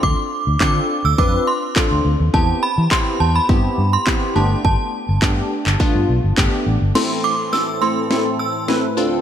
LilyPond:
<<
  \new Staff \with { instrumentName = "Synth bell" } { \time 4/4 \key a \minor \tempo 4 = 104 d'''4 d'''8. e'''16 d'''8 c'''4 r8 | a''8 b''8 c'''8 a''16 b''4 c'''8. a''8 | a''2. r4 | c'''8 d'''8 e'''8 c'''4 e'''8 r4 | }
  \new Staff \with { instrumentName = "Synth pluck" } { \time 4/4 \key a \minor <c' d' f' a'>8 r8 <c' d' f' a'>8 r8 <c' d' f' b'>8 r8 <c' d' f' a'>8 r8 | <b c' e' g'>8 r8 <b c' e' g'>8 r8 <b c' e' g'>8 r8 <b c' e' g'>8 <a b d' g'>8~ | <a b d' g'>8 r8 <a b d' g'>8 r8 <a b d' f'>8 r8 <a b d' g'>8 r8 | <a c' e' a'>4 r8 <a c' e' a'>8 <a c' e' a'>8 r8 <a c' e' b'>8 <c' d' f' a'>8 | }
  \new Staff \with { instrumentName = "Supersaw synth" } { \clef bass \time 4/4 \key a \minor r1 | r1 | r1 | <a, e c' a'>2.~ <a, e c' a'>8 <d, d f' c''>8 | }
  \new Staff \with { instrumentName = "Fingered electric bass" } { \clef bass \time 4/4 \key a \minor d,16 r8 d,16 d8 r16 d,16 f,8 r8. d,16 d,16 dis,16 | e,8 r16 e16 r8 e,8 g,8 g,8 r8 g,,8 | g,,16 r8 g,,16 g,8 r16 g,,16 r16 g,16 b,,16 g,,16 g,,16 r16 a,,16 g,,16 | r1 | }
  \new DrumStaff \with { instrumentName = "Drums" } \drummode { \time 4/4 bd4 <hc bd>4 bd4 <hc bd>4 | bd4 <hc bd>4 bd4 <hc bd>4 | bd4 <hc bd>8. hc16 bd4 <hc bd>4 | <cymc sn>4 sn4 sn4 sn4 | }
>>